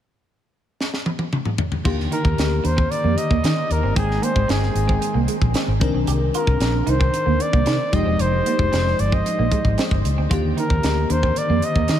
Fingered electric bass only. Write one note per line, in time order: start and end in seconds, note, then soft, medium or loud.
1.85 2.06 D#2 medium
2.25 2.35 D#2 medium
2.38 2.59 D2 medium
2.64 2.85 D#2 medium
3.04 3.15 F2 medium
3.31 3.41 D#2 medium
3.44 3.54 D#3 medium
3.70 3.81 D#2 medium
3.83 3.94 G1 medium
3.96 4.17 G#1 loud
4.36 4.46 G#1 medium
4.49 4.70 G1 medium
4.75 4.96 G#1 medium
5.15 5.25 C2 medium
5.42 5.52 A#1 medium
5.68 5.78 G#1 medium
5.81 5.92 C2 medium
5.94 6.05 B1 medium
6.08 6.29 C2 loud
6.47 6.58 C2 medium
6.60 6.81 A#1 medium
6.87 7.08 C2 medium
7.26 7.37 D2 medium
7.53 7.64 C2 medium
7.67 7.77 C3 medium
7.93 8.03 F1 medium
8.06 8.16 E1 medium
8.19 8.40 F1 loud
8.59 8.69 F1 medium
8.73 8.93 F1 medium
8.99 9.20 G1 medium
9.39 9.49 A#1 loud
9.64 9.75 G#1 medium
9.91 10.01 G1 medium
10.05 10.15 C#2 medium
10.18 10.28 D2 medium
10.31 10.51 D#2 loud
10.70 10.81 D#2 medium
10.84 11.04 D2 medium
11.10 11.31 D#2 medium
11.50 11.60 F2 medium
11.75 11.86 D#2 medium
11.89 11.99 D#3 medium